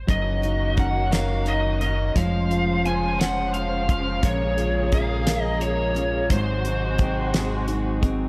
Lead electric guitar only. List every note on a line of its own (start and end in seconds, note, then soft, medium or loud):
0.10 0.81 D#5 medium
0.79 1.13 F#5 medium
1.13 1.48 F5 medium
1.48 1.80 D#5 medium
1.82 2.17 D#5 medium
2.17 2.86 F5 medium
2.86 3.20 G#5 medium
3.20 3.52 F#5 medium
3.54 3.86 F5 medium
3.90 4.25 F5 medium
4.25 4.95 C#5 medium
4.94 5.42 F5 loud
5.42 5.58 D#5 loud
5.62 6.31 C#5 medium
6.31 7.64 C5 medium